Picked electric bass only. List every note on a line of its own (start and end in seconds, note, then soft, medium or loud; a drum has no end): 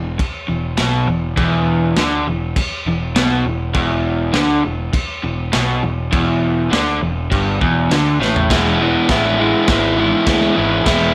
0.00 0.18 E1 medium
0.19 muted picked electric bass stroke soft
0.50 0.77 E1 medium
0.79 1.07 B1 medium
1.08 1.36 E1 medium
1.38 1.93 E1 medium
1.98 2.25 D2 medium
2.27 2.55 E1 medium
2.57 muted picked electric bass stroke soft
2.86 3.14 E1 medium
3.15 3.43 B1 medium
3.46 3.73 E1 medium
3.75 4.30 E1 medium
4.35 4.62 D2 loud
4.66 4.92 E1 medium
4.93 muted picked electric bass stroke soft
5.24 5.51 E1 medium
5.55 5.82 B1 loud
5.84 6.11 E1 medium
6.14 6.68 E1 medium
6.72 7.00 D2 medium
7.01 7.29 E1 medium
7.32 7.59 G1 loud
7.62 7.89 E1 loud
7.90 8.18 D2 medium
8.20 8.48 A1 medium
8.51 8.94 E1 medium
9.09 9.53 A1 medium
9.68 10.12 G#1 medium
10.27 10.49 D2 medium
10.58 10.80 G#1 loud
10.86 11.14 E1 medium